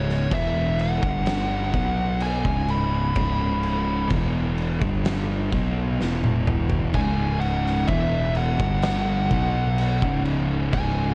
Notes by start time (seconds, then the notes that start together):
Already playing: C#1 C#2 G#2 C#3 C#5
0.09 snare
0.31 E1 E2 B2 E3 E5, kick, crash
0.79 F#5, crash
1.02 G1 G2 D3 G3, kick
1.26 snare, crash
1.73 B1 B2 F#3 B3, kick, crash
2.20 G#5, crash
2.44 C#1 C#2 G#2 C#3, kick
2.68 B5, crash
3.15 C#1 C#2 G#2 C#3, kick, crash
3.63 crash
4.10 E1 E2 B2 E3, kick, crash
4.58 crash
4.81 G1 G2 D3 G3, kick
5.05 snare, crash
5.52 B1 B2 F#3 B3, kick, crash
5.99 E1 E2 B2 E3, snare
6.24 high tom
6.47 mid tom
6.70 floor tom
6.94 C#1 C#2 G#2 C#3 G#5, kick, crash
7.40 F#5, crash
7.66 snare
7.88 E1 E2 B2 E3 E5, kick, crash
8.35 F#5, crash
8.60 G1 G2 D3 G3, kick
8.82 snare, crash
9.31 B1 B2 F#3 B3, kick, crash
9.78 crash
10.02 C#1 C#2 G#2 C#3, kick
10.25 crash
10.73 C#1 C#2 G#2 C#3 G#5, kick, crash